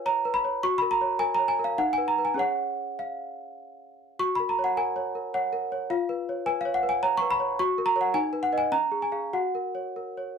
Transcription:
0.00 0.59 F4 medium
0.00 0.25 B4 medium
0.00 0.06 C#5 medium
0.00 0.65 F5 medium
0.00 0.66 G#5 medium
0.06 0.36 C#5 medium
0.06 0.35 A#5 medium
0.25 0.56 B4 medium
0.34 0.63 B5 medium
0.45 0.63 C#5 medium
0.63 1.75 F#4 medium
0.63 0.78 C#6 loud
0.78 1.13 A#4 medium
0.78 0.92 B5 loud
0.91 1.20 A#5 medium
1.01 1.32 C#5 medium
1.19 1.51 A#4 medium
1.19 1.34 G#5 loud
1.35 1.49 A#5 medium
1.39 1.71 C#5 medium
1.48 1.63 G#5 medium
1.59 1.79 A#4 medium
1.64 1.79 F5 medium
1.78 2.37 D#4 medium
1.78 1.93 F#5 medium
1.93 2.08 G#5 medium
1.98 2.17 B4 medium
2.08 2.23 A#5 medium
2.19 2.37 B4 medium
2.25 2.39 G#5 medium
2.34 4.13 C#4 medium
2.34 4.14 G#4 soft
2.34 4.15 C#5 soft
2.39 3.00 F#5 medium
2.99 3.59 F5 medium
4.19 5.87 F#4 medium
4.19 4.34 C#6 medium
4.35 4.49 B5 medium
4.40 4.70 A#4 soft
4.49 4.63 A#5 medium
4.59 4.89 C#5 soft
4.64 4.78 F#5 medium
4.77 5.08 A#4 medium
4.77 5.34 G#5 medium
4.96 5.27 C#5 soft
5.15 5.46 A#4 soft
5.34 5.64 C#5 soft
5.34 5.91 F#5 medium
5.53 5.83 A#4 medium
5.72 5.91 C#5 soft
5.90 7.54 F4 medium
5.90 6.46 F5 medium
6.09 6.39 B4 soft
6.29 6.58 C#5 soft
6.46 6.76 B4 medium
6.46 6.60 G#5 medium
6.61 6.75 F5 medium
6.65 6.95 C#5 medium
6.74 6.88 F#5 medium
6.83 7.13 B4 medium
6.89 7.03 G#5 medium
7.03 7.33 C#5 medium
7.03 7.17 A#5 loud
7.17 7.31 C#6 loud
7.22 7.51 B4 medium
7.31 7.59 B5 loud
7.40 7.59 C#5 medium
7.59 8.14 F#4 medium
7.59 7.87 C#6 loud
7.78 7.95 A#4 medium
7.86 8.01 A#5 loud
7.96 8.13 A#4 medium
7.96 8.13 C#5 medium
8.01 8.15 F#5 medium
8.14 8.71 D#4 medium
8.14 8.43 G#5 loud
8.33 8.51 B4 medium
8.43 8.58 F#5 medium
8.52 8.71 B4 medium
8.52 8.71 D#5 medium
8.58 8.73 G#5 medium
8.72 9.32 C#4 medium
8.72 9.03 A#5 medium
8.92 9.11 G#4 medium
9.02 9.34 G#5 medium
9.12 9.31 G#4 soft
9.12 9.31 F5 medium
9.33 10.38 F#4 medium
9.33 10.38 F#5 medium
9.55 9.88 A#4 soft
9.75 10.08 C#5 soft
9.96 10.29 A#4 soft
10.17 10.38 C#5 soft

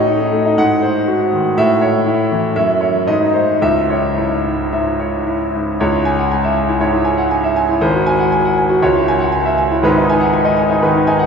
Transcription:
0.00 0.54 A2 medium
0.00 0.07 D#4 medium
0.00 0.22 C#5 medium
0.00 0.60 D#5 loud
0.07 0.18 D#4 medium
0.20 0.40 D#4 medium
0.32 0.57 A3 medium
0.45 0.57 D#4 medium
0.58 1.54 G#2 medium
0.58 0.98 F#5 medium
0.82 1.22 C5 medium
1.07 1.47 F#4 medium
1.33 1.58 D#3 medium
1.58 2.53 A2 medium
1.58 1.97 E5 loud
1.82 2.21 C#5 medium
2.06 2.46 E4 medium
2.32 2.57 E3 medium
2.56 3.05 F#2 medium
2.56 2.97 E5 medium
2.80 3.07 C#5 medium
3.07 3.60 G#2 medium
3.07 3.50 D#5 medium
3.21 3.42 D#4 medium
3.34 3.61 C5 medium
3.62 4.69 C#2 medium
3.62 4.06 E5 medium
3.90 4.34 C#5 medium
4.18 4.61 E4 medium
4.44 4.71 G#2 medium
4.72 4.94 G#2 medium
4.72 5.16 E5 medium
5.00 5.43 C#5 medium
5.27 5.71 E4 medium
5.55 5.81 G#2 medium
5.80 6.79 C#2 medium
5.80 6.01 C#5 medium
5.93 6.13 E4 medium
6.05 6.26 G#5 medium
6.19 6.32 F#5 medium
6.31 6.52 G#5 medium
6.44 6.64 E5 medium
6.56 6.77 G#5 medium
6.69 6.89 E4 medium
6.80 7.01 G#2 medium
6.80 7.01 C#5 medium
6.92 7.14 E4 medium
7.05 7.26 G#5 medium
7.18 7.31 F#5 medium
7.31 7.52 G#5 medium
7.44 7.65 E5 medium
7.56 7.77 G#5 medium
7.69 7.82 E4 medium
7.81 8.80 G#1 medium
7.81 8.02 C5 medium
7.94 8.15 F#4 medium
8.06 8.27 G#5 medium
8.19 8.32 F#5 medium
8.32 8.53 G#5 medium
8.45 8.65 F#5 medium
8.58 8.78 G#5 medium
8.69 8.83 F#4 medium
8.82 9.81 C#2 medium
8.82 9.03 C#5 medium
8.95 9.16 E4 medium
9.08 9.29 G#5 medium
9.20 9.33 F#5 medium
9.32 9.53 G#5 medium
9.45 9.66 E5 medium
9.58 9.79 G#5 medium
9.72 9.84 E4 medium
9.83 10.78 G#1 medium
9.83 10.78 G#2 medium
9.83 10.04 B4 medium
9.97 10.08 D#4 medium
10.09 10.29 D#4 medium
10.09 10.29 G#5 medium
10.20 10.33 F#5 medium
10.33 10.53 G#5 medium
10.45 10.64 D#5 medium
10.57 10.77 G#5 medium
10.70 10.89 D#4 medium
10.83 11.02 D#3 medium
10.83 11.02 B4 medium
10.95 11.06 D#4 medium
11.07 11.26 D#4 medium
11.07 11.26 G#5 medium
11.19 11.26 F#5 medium

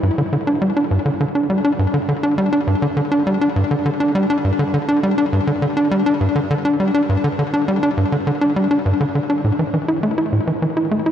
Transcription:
0.03 0.11 G2 medium
0.18 0.22 D3 medium
0.33 0.37 D3 medium
0.47 0.59 D4 medium
0.62 0.73 G3 medium
0.77 0.84 D4 medium
0.91 0.99 G2 medium
1.06 1.10 D3 medium
1.21 1.25 D3 medium
1.35 1.47 D4 medium
1.50 1.61 G3 medium
1.65 1.72 D4 medium
1.79 1.87 G2 medium
1.94 1.99 D3 medium
2.09 2.13 D3 medium
2.23 2.35 D4 medium
2.38 2.50 G3 medium
2.53 2.60 D4 medium
2.67 2.75 G2 medium
2.82 2.87 D3 medium
2.97 3.02 D3 medium
3.12 3.23 D4 medium
3.27 3.38 G3 medium
3.41 3.49 D4 medium
3.56 3.64 G2 medium
3.71 3.75 D3 medium
3.86 3.90 D3 medium
4.00 4.12 D4 medium
4.15 4.26 G3 medium
4.30 4.37 D4 medium
4.45 4.52 G2 medium
4.59 4.64 D3 medium
4.74 4.78 D3 medium
4.88 5.00 D4 medium
5.03 5.15 G3 medium
5.18 5.25 D4 medium
5.33 5.40 G2 medium
5.47 5.52 D3 medium
5.62 5.67 D3 medium
5.77 5.88 D4 medium
5.91 6.03 G3 medium
6.06 6.14 D4 medium
6.21 6.28 G2 medium
6.36 6.40 D3 medium
6.51 6.55 D3 medium
6.65 6.76 D4 medium
6.80 6.91 G3 medium
6.94 7.02 D4 medium
7.09 7.17 G2 medium
7.24 7.28 D3 medium
7.39 7.43 D3 medium
7.53 7.65 D4 medium
7.68 7.79 G3 medium
7.83 7.90 D4 medium
7.97 8.05 G2 medium
8.12 8.17 D3 medium
8.27 8.31 D3 medium
8.41 8.53 D4 medium
8.56 8.68 G3 medium
8.71 8.78 D4 medium
8.86 8.93 G2 medium
9.00 9.05 D3 medium
9.15 9.19 D3 medium
9.30 9.41 D4 medium
9.44 9.52 A2 medium
9.59 9.64 E3 medium
9.74 9.78 E3 medium
9.88 10.00 E4 medium
10.03 10.14 A3 medium
10.18 10.25 E4 medium
10.33 10.40 A2 medium
10.47 10.52 E3 medium
10.62 10.67 E3 medium
10.77 10.88 E4 medium
10.91 11.03 A3 medium
11.06 11.12 E4 medium

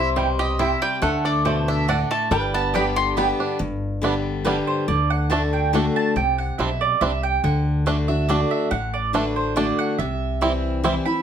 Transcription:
0.00 0.73 C2 medium
0.00 0.55 C3 medium
0.00 0.16 G3 medium
0.00 0.56 E4 medium
0.00 1.07 C5 loud
0.16 0.57 B2 medium
0.16 0.78 G3 medium
0.16 0.26 C4 medium
0.16 0.26 E4 medium
0.16 0.26 C5 medium
0.16 0.26 G5 medium
0.39 0.99 G4 medium
0.39 0.59 D#5 medium
0.59 1.00 C3 medium
0.59 0.69 C4 medium
0.59 1.03 E4 medium
0.59 0.69 E4 medium
0.59 0.69 C5 loud
0.59 0.81 E5 medium
0.59 0.69 G5 medium
0.82 1.02 G3 medium
0.82 1.02 G5 loud
1.02 2.02 D2 medium
1.02 1.84 D3 medium
1.02 1.44 A3 medium
1.02 2.35 A4 medium
1.02 1.24 F#5 medium
1.25 1.68 D4 medium
1.25 1.45 D5 medium
1.45 1.86 B2 medium
1.45 1.55 A3 medium
1.45 2.07 A3 medium
1.45 1.55 F#4 medium
1.45 1.67 C5 medium
1.45 1.55 D5 medium
1.45 1.55 A5 loud
1.68 1.89 D4 medium
1.68 1.88 E5 medium
1.88 2.29 A2 medium
1.88 1.98 A3 medium
1.88 2.75 D4 medium
1.88 1.98 F#4 loud
1.88 1.98 D5 loud
1.88 2.10 F#5 medium
1.88 1.98 A5 loud
2.11 2.31 A3 medium
2.11 2.31 A5 loud
2.31 3.31 G1 loud
2.31 3.13 G2 medium
2.31 2.92 G3 medium
2.31 3.35 B4 medium
2.31 2.53 G5 medium
2.54 3.13 B3 medium
2.54 2.74 A5 medium
2.73 3.15 D3 medium
2.73 3.15 G3 medium
2.73 2.83 B3 medium
2.73 3.15 B3 medium
2.73 3.35 D4 medium
2.73 2.84 G4 medium
2.73 3.16 G4 medium
2.73 2.84 D5 medium
2.73 2.84 G5 medium
2.73 2.96 B5 medium
2.96 3.56 G4 medium
2.96 3.16 C6 loud
3.16 3.58 D3 medium
3.16 3.58 G3 medium
3.16 3.26 B3 medium
3.16 3.58 B3 medium
3.16 3.60 B3 medium
3.16 3.26 G4 medium
3.16 3.58 G4 medium
3.16 3.27 D5 loud
3.16 3.27 G5 loud
3.16 3.31 B5 medium
3.40 3.60 D4 medium
3.59 4.59 G1 medium
3.59 4.41 G2 loud
4.02 4.43 D3 medium
4.02 4.43 G3 medium
4.02 4.13 G3 medium
4.02 4.43 B3 medium
4.02 4.13 B3 medium
4.02 4.14 D4 medium
4.02 4.44 G4 medium
4.45 4.86 D3 loud
4.45 4.86 G3 loud
4.45 4.56 G3 medium
4.45 4.86 B3 medium
4.45 4.56 B3 medium
4.45 4.56 D4 medium
4.45 4.86 G4 medium
4.45 4.67 B4 medium
4.67 4.87 C5 medium
4.88 5.87 D2 medium
4.88 5.28 D3 medium
4.88 5.10 D5 medium
5.10 5.30 F#5 medium
5.30 5.71 D3 medium
5.30 5.71 A3 medium
5.30 5.41 A3 medium
5.30 5.71 D4 medium
5.30 5.42 D4 medium
5.30 5.72 F#4 loud
5.30 5.52 A5 medium
5.53 5.73 G5 medium
5.73 6.14 D3 medium
5.73 6.14 A3 medium
5.73 5.84 A3 medium
5.73 6.14 D4 medium
5.73 5.84 D4 medium
5.73 6.15 F#4 loud
5.73 5.95 F#5 medium
5.96 6.16 A5 loud
6.16 6.49 C2 loud
6.16 6.38 G5 medium
6.38 6.58 F#5 medium
6.58 6.95 B1 medium
6.58 6.99 B2 medium
6.58 6.69 G3 medium
6.58 6.69 C4 medium
6.58 6.69 D4 medium
6.58 6.80 E5 medium
6.81 7.01 D5 medium
7.01 7.37 C2 medium
7.01 7.42 C3 medium
7.01 7.11 G3 medium
7.01 7.12 C4 medium
7.01 7.12 D4 medium
7.01 7.23 E5 medium
7.23 7.43 G5 loud
7.43 8.42 D2 loud
7.43 7.85 D3 medium
7.43 8.05 F#5 medium
7.86 8.08 D3 medium
7.86 8.08 A3 medium
7.86 7.97 A3 medium
7.86 8.08 D4 medium
7.86 7.97 D4 medium
7.86 8.07 F#4 medium
8.08 8.28 D4 soft
8.08 8.28 F#4 medium
8.08 8.28 E5 medium
8.28 8.69 D3 medium
8.28 8.70 A3 loud
8.28 8.39 A3 medium
8.28 8.70 D4 loud
8.28 8.39 D4 medium
8.28 8.70 F#4 medium
8.28 8.50 D5 medium
8.51 8.71 E5 medium
8.71 9.70 A1 medium
8.71 9.52 A2 medium
8.71 8.93 F#5 loud
8.94 9.13 D5 medium
9.13 9.54 D3 medium
9.13 9.54 A3 medium
9.13 9.24 A3 medium
9.13 9.54 D4 loud
9.13 9.24 D4 medium
9.13 9.55 F#4 loud
9.13 9.36 B4 medium
9.36 9.56 C5 medium
9.56 9.97 D3 medium
9.56 9.97 A3 medium
9.56 9.66 A3 medium
9.56 9.97 D4 loud
9.56 9.67 D4 medium
9.56 9.97 F#4 medium
9.56 9.78 D5 medium
9.79 9.98 F#5 loud
9.98 10.97 C2 loud
9.98 10.80 C3 medium
9.98 10.80 E5 medium
10.41 10.82 E3 medium
10.41 10.82 G3 medium
10.41 10.51 G3 medium
10.41 10.82 C4 loud
10.41 10.52 C4 medium
10.41 10.52 E4 medium
10.41 10.82 E4 medium
10.84 11.05 E3 medium
10.84 11.05 G3 medium
10.84 10.94 G3 medium
10.84 10.94 C4 medium
10.84 11.06 C4 medium
10.84 11.05 E4 loud
10.84 10.94 E4 medium
11.05 11.22 C4 medium
11.05 11.22 E4 medium
11.05 11.22 B5 loud

